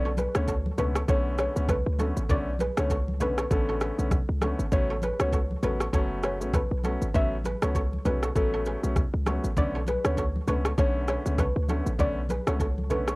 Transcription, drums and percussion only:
0.17 high conga, shaker
0.35 cross-stick, shaker
0.48 kick, shaker
0.66 high conga
0.78 low conga, shaker
0.95 cross-stick, shaker
1.08 kick, shaker
1.38 cross-stick, shaker
1.56 shaker
1.69 kick, cross-stick, high conga, low conga, shaker
1.99 high conga, shaker
2.17 shaker
2.29 kick, low conga, shaker
2.59 high conga, shaker
2.77 cross-stick, shaker
2.90 kick, shaker
3.08 high conga
3.20 low conga, shaker
3.38 cross-stick, shaker
3.51 kick, shaker
3.81 cross-stick, shaker
3.99 shaker
4.11 kick, cross-stick, high conga, low conga, shaker
4.41 cross-stick, high conga, shaker
4.59 shaker
4.72 kick, low conga, shaker
5.02 high conga, shaker
5.20 cross-stick, shaker
5.32 kick, shaker
5.51 high conga
5.63 low conga, shaker
5.80 cross-stick, shaker
5.93 kick, shaker
6.23 cross-stick, shaker
6.41 shaker
6.54 kick, cross-stick, high conga, low conga, shaker
6.83 high conga, shaker
7.02 shaker
7.14 kick, low conga, shaker
7.44 high conga, shaker
7.62 cross-stick, shaker
7.75 kick, shaker
7.93 high conga
8.05 high conga, low conga, shaker
8.23 cross-stick, shaker
8.36 kick, shaker
8.66 shaker
8.84 shaker
8.96 kick, cross-stick, high conga, low conga, shaker
9.26 cross-stick, high conga, shaker
9.44 shaker
9.57 kick, low conga, shaker
9.87 high conga, shaker
10.05 cross-stick, shaker
10.17 kick, shaker
10.36 high conga
10.48 low conga, shaker
10.65 cross-stick, shaker
10.78 kick, shaker
11.08 cross-stick, shaker
11.26 shaker
11.38 kick, cross-stick, high conga, low conga, shaker
11.68 high conga, shaker
11.87 shaker
11.99 kick, low conga, shaker
12.29 high conga, shaker
12.47 cross-stick, shaker
12.60 kick, shaker
12.78 high conga
12.90 low conga, shaker
13.08 cross-stick, shaker

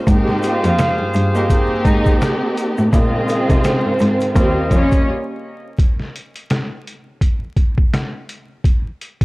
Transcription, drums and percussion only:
0.07 kick, closed hi-hat, shaker
0.28 snare
0.43 closed hi-hat, shaker
0.64 closed hi-hat, shaker
0.79 cross-stick, snare, closed hi-hat, shaker
1.14 closed hi-hat, shaker
1.35 shaker
1.50 kick, closed hi-hat, shaker
1.85 kick, closed hi-hat, shaker
2.06 kick, shaker
2.21 cross-stick, snare, closed hi-hat, shaker
2.57 closed hi-hat, shaker
2.78 shaker
2.93 kick, closed hi-hat, shaker
3.28 closed hi-hat, shaker
3.50 kick, closed hi-hat, shaker
3.64 cross-stick, snare, closed hi-hat, shaker
3.99 snare, closed hi-hat, shaker
4.20 closed hi-hat, shaker
4.35 kick, closed hi-hat, shaker
4.71 kick, closed hi-hat, shaker
4.92 kick, closed hi-hat, shaker
5.79 kick, closed hi-hat
6.00 snare
6.16 closed hi-hat
6.36 closed hi-hat
6.50 cross-stick, snare, closed hi-hat
6.87 closed hi-hat
7.21 kick, closed hi-hat
7.57 kick, closed hi-hat
7.78 kick
7.94 cross-stick, snare, closed hi-hat
8.29 closed hi-hat
8.64 kick, closed hi-hat
9.01 closed hi-hat
9.21 kick, closed hi-hat

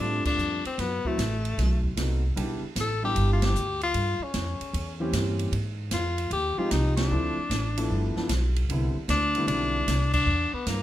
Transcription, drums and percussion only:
0.25 kick, crash
0.39 hi-hat pedal
0.65 ride
0.78 kick, snare, ride
1.05 kick
1.18 kick, snare, hi-hat pedal, ride
1.45 ride
1.58 kick, snare, ride
1.84 kick
1.97 kick, snare, hi-hat pedal, ride
2.37 kick, ride
2.76 kick, snare, hi-hat pedal, ride
3.16 kick, ride
3.42 snare, ride
3.55 hi-hat pedal
3.81 ride
3.94 kick, ride
4.34 kick, snare, hi-hat pedal, ride
4.61 ride
4.74 kick, ride
5.13 kick, snare, hi-hat pedal, ride
5.39 ride
5.52 kick, ride
5.91 kick, snare, hi-hat pedal, ride
6.18 ride
6.31 kick, ride
6.71 kick, snare, hi-hat pedal, ride
6.97 snare, ride
7.50 kick, snare, hi-hat pedal, ride
7.78 ride
7.90 kick
8.17 snare
8.29 kick, snare, hi-hat pedal, ride
8.56 ride
8.69 kick, ride
9.09 kick, snare, hi-hat pedal, ride
9.35 ride
9.48 kick, ride
9.88 kick, snare, hi-hat pedal, ride
10.14 kick, crash
10.67 kick, snare, hi-hat pedal, ride

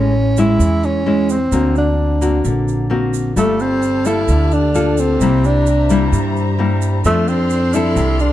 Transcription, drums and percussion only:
0.37 shaker
0.60 shaker
0.83 shaker
1.29 shaker
1.52 shaker
1.75 shaker
2.22 shaker
2.45 shaker
2.68 shaker
3.14 shaker
3.37 shaker
3.60 shaker
3.82 shaker
4.05 shaker
4.28 shaker
4.51 shaker
4.75 shaker
4.97 shaker
5.21 shaker
5.44 shaker
5.66 shaker
5.90 shaker
6.13 shaker
6.36 shaker
6.82 shaker
7.05 shaker
7.28 shaker
7.50 shaker
7.73 shaker
7.96 shaker
8.19 shaker

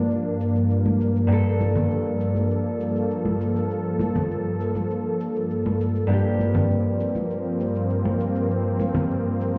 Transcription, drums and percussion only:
0.11 shaker
0.41 shaker
0.56 shaker
0.71 shaker
0.86 high conga
1.01 shaker
1.16 shaker
1.31 shaker
1.61 high conga, shaker
1.76 low conga, shaker
1.91 shaker
2.21 shaker
2.35 high conga, shaker
2.51 shaker
2.81 shaker
2.96 shaker
3.11 shaker
3.25 high conga
3.41 shaker
3.56 shaker
3.71 shaker
3.99 high conga, shaker
4.16 low conga, shaker
4.31 shaker
4.61 shaker
4.75 high conga, shaker
4.91 shaker
5.21 shaker
5.36 shaker
5.51 shaker
5.66 high conga
5.81 shaker
5.96 shaker
6.11 shaker
6.39 high conga, shaker
6.55 low conga, shaker
6.71 shaker
7.00 shaker
7.15 high conga, shaker
7.31 shaker
7.60 shaker
7.75 shaker
7.90 shaker
8.05 high conga
8.20 shaker
8.36 shaker
8.51 shaker
8.79 high conga, shaker
8.95 low conga, shaker
9.11 shaker
9.41 shaker
9.54 high conga

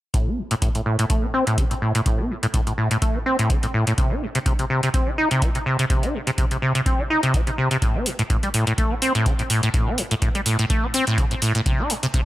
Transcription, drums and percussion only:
0.14 kick, closed hi-hat
0.51 closed hi-hat
0.62 kick, closed hi-hat
0.75 closed hi-hat
0.99 closed hi-hat
1.10 kick, closed hi-hat
1.47 closed hi-hat
1.58 kick, closed hi-hat
1.71 closed hi-hat
1.95 closed hi-hat
2.06 kick, closed hi-hat
2.43 closed hi-hat
2.54 kick, closed hi-hat
2.67 closed hi-hat
2.91 closed hi-hat
3.02 kick, closed hi-hat
3.39 closed hi-hat
3.50 kick, closed hi-hat
3.63 closed hi-hat
3.87 closed hi-hat
3.98 kick, closed hi-hat
4.35 closed hi-hat
4.46 kick, closed hi-hat
4.59 closed hi-hat
4.83 closed hi-hat
4.94 kick, closed hi-hat
5.31 closed hi-hat
5.42 kick, closed hi-hat
5.55 closed hi-hat
5.79 closed hi-hat
5.90 kick, closed hi-hat
6.03 closed hi-hat
6.27 closed hi-hat
6.38 kick, closed hi-hat
6.51 closed hi-hat
6.75 closed hi-hat
6.86 kick, closed hi-hat
7.23 closed hi-hat
7.34 kick, closed hi-hat
7.47 closed hi-hat
7.71 closed hi-hat
7.82 kick, closed hi-hat
8.06 open hi-hat
8.19 closed hi-hat
8.30 kick, closed hi-hat
8.43 closed hi-hat
8.54 open hi-hat
8.67 closed hi-hat
8.78 kick, closed hi-hat
9.02 open hi-hat
9.15 closed hi-hat
9.26 kick, closed hi-hat
9.39 closed hi-hat
9.50 open hi-hat
9.63 closed hi-hat
9.74 kick, closed hi-hat
9.98 open hi-hat
10.11 closed hi-hat
10.22 kick, closed hi-hat
10.35 closed hi-hat
10.46 open hi-hat
10.59 closed hi-hat
10.70 kick, closed hi-hat
10.94 open hi-hat
11.07 closed hi-hat
11.18 kick, closed hi-hat
11.31 closed hi-hat
11.42 open hi-hat
11.55 closed hi-hat
11.66 kick, closed hi-hat
11.90 open hi-hat
12.03 closed hi-hat
12.14 kick, closed hi-hat

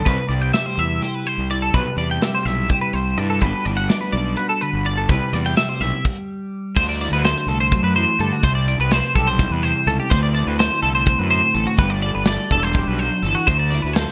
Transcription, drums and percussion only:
0.06 kick, closed hi-hat
0.30 closed hi-hat
0.54 snare, closed hi-hat
0.77 closed hi-hat
1.02 snare, closed hi-hat
1.26 closed hi-hat
1.50 closed hi-hat
1.74 kick, closed hi-hat
1.98 closed hi-hat
2.22 snare, closed hi-hat
2.46 snare, closed hi-hat
2.69 kick, closed hi-hat
2.93 closed hi-hat
3.18 closed hi-hat
3.41 kick, closed hi-hat
3.66 closed hi-hat
3.89 snare, closed hi-hat
4.13 closed hi-hat
4.36 closed hi-hat
4.61 closed hi-hat
4.85 closed hi-hat
5.09 kick, closed hi-hat
5.33 snare, closed hi-hat
5.57 snare, closed hi-hat
5.81 snare, closed hi-hat
6.05 kick, crash
6.76 kick, crash
7.00 closed hi-hat
7.25 snare, closed hi-hat
7.49 closed hi-hat
7.72 kick, closed hi-hat
7.96 closed hi-hat
8.19 closed hi-hat
8.43 kick, closed hi-hat
8.68 closed hi-hat
8.91 snare, closed hi-hat
9.15 kick, closed hi-hat
9.39 kick, closed hi-hat
9.63 closed hi-hat
9.88 closed hi-hat
10.11 kick, closed hi-hat
10.35 closed hi-hat
10.60 snare, closed hi-hat
10.83 closed hi-hat
11.06 kick, closed hi-hat
11.30 closed hi-hat
11.54 closed hi-hat
11.77 kick, closed hi-hat
12.02 closed hi-hat
12.25 snare, closed hi-hat
12.50 kick, closed hi-hat
12.73 kick, closed hi-hat
12.98 closed hi-hat
13.23 closed hi-hat
13.47 kick, closed hi-hat
13.72 snare, closed hi-hat
13.96 snare, closed hi-hat

